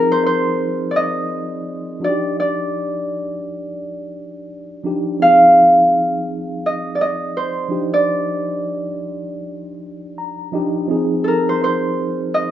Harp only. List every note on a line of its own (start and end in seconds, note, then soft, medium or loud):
0.00 2.03 A#4 medium
0.12 0.26 C5 medium
0.26 2.24 C5 medium
0.91 1.02 D5 medium
0.96 2.10 D#5 loud
2.04 2.39 D5 medium
2.40 4.24 D5 medium
5.22 6.89 F5 loud
6.66 7.01 D#5 medium
6.95 7.07 D5 medium
7.01 8.00 D#5 medium
7.37 9.35 C5 medium
7.94 9.78 D5 medium
11.24 11.34 A4 medium
11.24 12.51 A#4 medium
11.49 11.63 C5 medium
11.64 12.51 C5 medium
12.34 12.51 D#5 loud